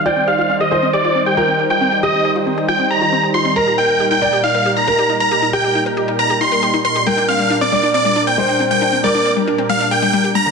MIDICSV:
0, 0, Header, 1, 5, 480
1, 0, Start_track
1, 0, Key_signature, -3, "minor"
1, 0, Tempo, 437956
1, 64, Time_signature, 4, 2, 24, 8
1, 11520, End_track
2, 0, Start_track
2, 0, Title_t, "Supersaw synth"
2, 0, Program_c, 0, 81
2, 62, Note_on_c, 0, 79, 97
2, 258, Note_off_c, 0, 79, 0
2, 302, Note_on_c, 0, 77, 96
2, 596, Note_off_c, 0, 77, 0
2, 663, Note_on_c, 0, 75, 92
2, 957, Note_off_c, 0, 75, 0
2, 1022, Note_on_c, 0, 74, 90
2, 1316, Note_off_c, 0, 74, 0
2, 1384, Note_on_c, 0, 79, 97
2, 1775, Note_off_c, 0, 79, 0
2, 1865, Note_on_c, 0, 79, 94
2, 2158, Note_off_c, 0, 79, 0
2, 2225, Note_on_c, 0, 75, 92
2, 2518, Note_off_c, 0, 75, 0
2, 2942, Note_on_c, 0, 79, 89
2, 3139, Note_off_c, 0, 79, 0
2, 3184, Note_on_c, 0, 82, 94
2, 3575, Note_off_c, 0, 82, 0
2, 3661, Note_on_c, 0, 84, 86
2, 3858, Note_off_c, 0, 84, 0
2, 3902, Note_on_c, 0, 82, 93
2, 4098, Note_off_c, 0, 82, 0
2, 4142, Note_on_c, 0, 79, 100
2, 4436, Note_off_c, 0, 79, 0
2, 4502, Note_on_c, 0, 79, 93
2, 4796, Note_off_c, 0, 79, 0
2, 4862, Note_on_c, 0, 77, 96
2, 5156, Note_off_c, 0, 77, 0
2, 5221, Note_on_c, 0, 82, 93
2, 5614, Note_off_c, 0, 82, 0
2, 5702, Note_on_c, 0, 82, 94
2, 5996, Note_off_c, 0, 82, 0
2, 6064, Note_on_c, 0, 79, 93
2, 6357, Note_off_c, 0, 79, 0
2, 6783, Note_on_c, 0, 82, 88
2, 6979, Note_off_c, 0, 82, 0
2, 7024, Note_on_c, 0, 84, 91
2, 7415, Note_off_c, 0, 84, 0
2, 7504, Note_on_c, 0, 84, 84
2, 7699, Note_off_c, 0, 84, 0
2, 7742, Note_on_c, 0, 79, 90
2, 7939, Note_off_c, 0, 79, 0
2, 7984, Note_on_c, 0, 77, 98
2, 8277, Note_off_c, 0, 77, 0
2, 8344, Note_on_c, 0, 74, 94
2, 8637, Note_off_c, 0, 74, 0
2, 8704, Note_on_c, 0, 74, 98
2, 8997, Note_off_c, 0, 74, 0
2, 9065, Note_on_c, 0, 79, 98
2, 9456, Note_off_c, 0, 79, 0
2, 9544, Note_on_c, 0, 79, 96
2, 9837, Note_off_c, 0, 79, 0
2, 9906, Note_on_c, 0, 74, 96
2, 10198, Note_off_c, 0, 74, 0
2, 10625, Note_on_c, 0, 77, 89
2, 10820, Note_off_c, 0, 77, 0
2, 10863, Note_on_c, 0, 79, 92
2, 11255, Note_off_c, 0, 79, 0
2, 11345, Note_on_c, 0, 82, 88
2, 11520, Note_off_c, 0, 82, 0
2, 11520, End_track
3, 0, Start_track
3, 0, Title_t, "Grand piano"
3, 0, Program_c, 1, 0
3, 62, Note_on_c, 1, 74, 99
3, 687, Note_off_c, 1, 74, 0
3, 782, Note_on_c, 1, 72, 90
3, 1407, Note_off_c, 1, 72, 0
3, 1502, Note_on_c, 1, 70, 91
3, 2127, Note_off_c, 1, 70, 0
3, 2224, Note_on_c, 1, 67, 86
3, 3808, Note_off_c, 1, 67, 0
3, 3903, Note_on_c, 1, 70, 98
3, 4528, Note_off_c, 1, 70, 0
3, 4623, Note_on_c, 1, 74, 87
3, 5248, Note_off_c, 1, 74, 0
3, 5343, Note_on_c, 1, 70, 88
3, 5967, Note_off_c, 1, 70, 0
3, 6064, Note_on_c, 1, 67, 88
3, 7648, Note_off_c, 1, 67, 0
3, 7745, Note_on_c, 1, 70, 94
3, 8368, Note_off_c, 1, 70, 0
3, 8465, Note_on_c, 1, 74, 94
3, 9088, Note_off_c, 1, 74, 0
3, 9184, Note_on_c, 1, 72, 92
3, 9808, Note_off_c, 1, 72, 0
3, 9904, Note_on_c, 1, 70, 91
3, 11488, Note_off_c, 1, 70, 0
3, 11520, End_track
4, 0, Start_track
4, 0, Title_t, "Synth arpeggio sound"
4, 0, Program_c, 2, 84
4, 63, Note_on_c, 2, 65, 80
4, 103, Note_off_c, 2, 65, 0
4, 183, Note_on_c, 2, 60, 77
4, 250, Note_off_c, 2, 60, 0
4, 303, Note_on_c, 2, 67, 79
4, 370, Note_off_c, 2, 67, 0
4, 423, Note_on_c, 2, 65, 71
4, 463, Note_off_c, 2, 65, 0
4, 543, Note_on_c, 2, 60, 80
4, 610, Note_off_c, 2, 60, 0
4, 664, Note_on_c, 2, 67, 75
4, 730, Note_off_c, 2, 67, 0
4, 784, Note_on_c, 2, 65, 73
4, 824, Note_off_c, 2, 65, 0
4, 904, Note_on_c, 2, 60, 80
4, 971, Note_off_c, 2, 60, 0
4, 1025, Note_on_c, 2, 67, 82
4, 1091, Note_off_c, 2, 67, 0
4, 1146, Note_on_c, 2, 65, 75
4, 1185, Note_off_c, 2, 65, 0
4, 1265, Note_on_c, 2, 60, 74
4, 1331, Note_off_c, 2, 60, 0
4, 1385, Note_on_c, 2, 67, 70
4, 1451, Note_off_c, 2, 67, 0
4, 1505, Note_on_c, 2, 65, 79
4, 1544, Note_off_c, 2, 65, 0
4, 1625, Note_on_c, 2, 60, 73
4, 1691, Note_off_c, 2, 60, 0
4, 1744, Note_on_c, 2, 67, 70
4, 1811, Note_off_c, 2, 67, 0
4, 1864, Note_on_c, 2, 65, 77
4, 1904, Note_off_c, 2, 65, 0
4, 1985, Note_on_c, 2, 60, 80
4, 2051, Note_off_c, 2, 60, 0
4, 2104, Note_on_c, 2, 67, 73
4, 2171, Note_off_c, 2, 67, 0
4, 2224, Note_on_c, 2, 65, 75
4, 2264, Note_off_c, 2, 65, 0
4, 2344, Note_on_c, 2, 60, 71
4, 2411, Note_off_c, 2, 60, 0
4, 2464, Note_on_c, 2, 67, 80
4, 2531, Note_off_c, 2, 67, 0
4, 2584, Note_on_c, 2, 65, 74
4, 2624, Note_off_c, 2, 65, 0
4, 2704, Note_on_c, 2, 60, 74
4, 2771, Note_off_c, 2, 60, 0
4, 2823, Note_on_c, 2, 67, 75
4, 2890, Note_off_c, 2, 67, 0
4, 2943, Note_on_c, 2, 65, 80
4, 2984, Note_off_c, 2, 65, 0
4, 3064, Note_on_c, 2, 60, 74
4, 3131, Note_off_c, 2, 60, 0
4, 3183, Note_on_c, 2, 67, 75
4, 3250, Note_off_c, 2, 67, 0
4, 3304, Note_on_c, 2, 65, 74
4, 3344, Note_off_c, 2, 65, 0
4, 3424, Note_on_c, 2, 60, 78
4, 3491, Note_off_c, 2, 60, 0
4, 3544, Note_on_c, 2, 67, 73
4, 3611, Note_off_c, 2, 67, 0
4, 3665, Note_on_c, 2, 65, 70
4, 3705, Note_off_c, 2, 65, 0
4, 3784, Note_on_c, 2, 60, 76
4, 3851, Note_off_c, 2, 60, 0
4, 3905, Note_on_c, 2, 70, 84
4, 3971, Note_off_c, 2, 70, 0
4, 4024, Note_on_c, 2, 67, 74
4, 4064, Note_off_c, 2, 67, 0
4, 4145, Note_on_c, 2, 63, 77
4, 4211, Note_off_c, 2, 63, 0
4, 4264, Note_on_c, 2, 70, 72
4, 4331, Note_off_c, 2, 70, 0
4, 4384, Note_on_c, 2, 67, 79
4, 4424, Note_off_c, 2, 67, 0
4, 4504, Note_on_c, 2, 63, 77
4, 4571, Note_off_c, 2, 63, 0
4, 4623, Note_on_c, 2, 70, 73
4, 4690, Note_off_c, 2, 70, 0
4, 4744, Note_on_c, 2, 67, 75
4, 4784, Note_off_c, 2, 67, 0
4, 4864, Note_on_c, 2, 63, 78
4, 4931, Note_off_c, 2, 63, 0
4, 4984, Note_on_c, 2, 70, 75
4, 5051, Note_off_c, 2, 70, 0
4, 5104, Note_on_c, 2, 67, 76
4, 5144, Note_off_c, 2, 67, 0
4, 5224, Note_on_c, 2, 63, 76
4, 5291, Note_off_c, 2, 63, 0
4, 5344, Note_on_c, 2, 70, 80
4, 5411, Note_off_c, 2, 70, 0
4, 5465, Note_on_c, 2, 67, 78
4, 5504, Note_off_c, 2, 67, 0
4, 5584, Note_on_c, 2, 63, 73
4, 5651, Note_off_c, 2, 63, 0
4, 5704, Note_on_c, 2, 70, 75
4, 5771, Note_off_c, 2, 70, 0
4, 5824, Note_on_c, 2, 67, 82
4, 5864, Note_off_c, 2, 67, 0
4, 5944, Note_on_c, 2, 63, 74
4, 6011, Note_off_c, 2, 63, 0
4, 6064, Note_on_c, 2, 70, 80
4, 6131, Note_off_c, 2, 70, 0
4, 6185, Note_on_c, 2, 67, 75
4, 6225, Note_off_c, 2, 67, 0
4, 6305, Note_on_c, 2, 63, 80
4, 6371, Note_off_c, 2, 63, 0
4, 6424, Note_on_c, 2, 70, 80
4, 6491, Note_off_c, 2, 70, 0
4, 6543, Note_on_c, 2, 67, 74
4, 6584, Note_off_c, 2, 67, 0
4, 6664, Note_on_c, 2, 63, 74
4, 6731, Note_off_c, 2, 63, 0
4, 6784, Note_on_c, 2, 70, 82
4, 6851, Note_off_c, 2, 70, 0
4, 6905, Note_on_c, 2, 67, 79
4, 6944, Note_off_c, 2, 67, 0
4, 7024, Note_on_c, 2, 63, 75
4, 7091, Note_off_c, 2, 63, 0
4, 7143, Note_on_c, 2, 70, 76
4, 7210, Note_off_c, 2, 70, 0
4, 7264, Note_on_c, 2, 67, 85
4, 7304, Note_off_c, 2, 67, 0
4, 7384, Note_on_c, 2, 63, 72
4, 7451, Note_off_c, 2, 63, 0
4, 7504, Note_on_c, 2, 70, 74
4, 7571, Note_off_c, 2, 70, 0
4, 7625, Note_on_c, 2, 67, 76
4, 7664, Note_off_c, 2, 67, 0
4, 7744, Note_on_c, 2, 55, 83
4, 7811, Note_off_c, 2, 55, 0
4, 7864, Note_on_c, 2, 62, 75
4, 7931, Note_off_c, 2, 62, 0
4, 7985, Note_on_c, 2, 60, 72
4, 8024, Note_off_c, 2, 60, 0
4, 8104, Note_on_c, 2, 55, 70
4, 8171, Note_off_c, 2, 55, 0
4, 8224, Note_on_c, 2, 62, 81
4, 8290, Note_off_c, 2, 62, 0
4, 8344, Note_on_c, 2, 60, 78
4, 8384, Note_off_c, 2, 60, 0
4, 8464, Note_on_c, 2, 55, 76
4, 8531, Note_off_c, 2, 55, 0
4, 8585, Note_on_c, 2, 62, 80
4, 8651, Note_off_c, 2, 62, 0
4, 8704, Note_on_c, 2, 60, 83
4, 8744, Note_off_c, 2, 60, 0
4, 8824, Note_on_c, 2, 55, 76
4, 8891, Note_off_c, 2, 55, 0
4, 8943, Note_on_c, 2, 62, 74
4, 9010, Note_off_c, 2, 62, 0
4, 9064, Note_on_c, 2, 60, 72
4, 9104, Note_off_c, 2, 60, 0
4, 9183, Note_on_c, 2, 55, 78
4, 9250, Note_off_c, 2, 55, 0
4, 9304, Note_on_c, 2, 62, 73
4, 9371, Note_off_c, 2, 62, 0
4, 9424, Note_on_c, 2, 60, 76
4, 9464, Note_off_c, 2, 60, 0
4, 9544, Note_on_c, 2, 55, 79
4, 9610, Note_off_c, 2, 55, 0
4, 9664, Note_on_c, 2, 62, 86
4, 9731, Note_off_c, 2, 62, 0
4, 9784, Note_on_c, 2, 60, 74
4, 9824, Note_off_c, 2, 60, 0
4, 9905, Note_on_c, 2, 55, 78
4, 9971, Note_off_c, 2, 55, 0
4, 10025, Note_on_c, 2, 62, 76
4, 10091, Note_off_c, 2, 62, 0
4, 10144, Note_on_c, 2, 60, 80
4, 10184, Note_off_c, 2, 60, 0
4, 10264, Note_on_c, 2, 55, 76
4, 10331, Note_off_c, 2, 55, 0
4, 10384, Note_on_c, 2, 62, 75
4, 10451, Note_off_c, 2, 62, 0
4, 10504, Note_on_c, 2, 60, 75
4, 10544, Note_off_c, 2, 60, 0
4, 10624, Note_on_c, 2, 55, 85
4, 10690, Note_off_c, 2, 55, 0
4, 10744, Note_on_c, 2, 62, 81
4, 10811, Note_off_c, 2, 62, 0
4, 10864, Note_on_c, 2, 55, 75
4, 10931, Note_off_c, 2, 55, 0
4, 10985, Note_on_c, 2, 55, 94
4, 11051, Note_off_c, 2, 55, 0
4, 11105, Note_on_c, 2, 55, 98
4, 11204, Note_off_c, 2, 55, 0
4, 11224, Note_on_c, 2, 67, 72
4, 11291, Note_off_c, 2, 67, 0
4, 11345, Note_on_c, 2, 55, 71
4, 11384, Note_off_c, 2, 55, 0
4, 11465, Note_on_c, 2, 50, 73
4, 11520, Note_off_c, 2, 50, 0
4, 11520, End_track
5, 0, Start_track
5, 0, Title_t, "Analog synth pad"
5, 0, Program_c, 3, 89
5, 0, Note_on_c, 3, 51, 75
5, 0, Note_on_c, 3, 55, 69
5, 0, Note_on_c, 3, 63, 70
5, 0, Note_on_c, 3, 72, 82
5, 3859, Note_off_c, 3, 51, 0
5, 3859, Note_off_c, 3, 72, 0
5, 3903, Note_on_c, 3, 46, 72
5, 3903, Note_on_c, 3, 70, 83
5, 7700, Note_off_c, 3, 55, 0
5, 7700, Note_off_c, 3, 63, 0
5, 7705, Note_off_c, 3, 70, 0
5, 7744, Note_on_c, 3, 55, 67
5, 7744, Note_on_c, 3, 70, 84
5, 7745, Note_on_c, 3, 62, 69
5, 11520, Note_off_c, 3, 46, 0
5, 11520, Note_off_c, 3, 55, 0
5, 11520, Note_off_c, 3, 62, 0
5, 11520, Note_off_c, 3, 70, 0
5, 11520, End_track
0, 0, End_of_file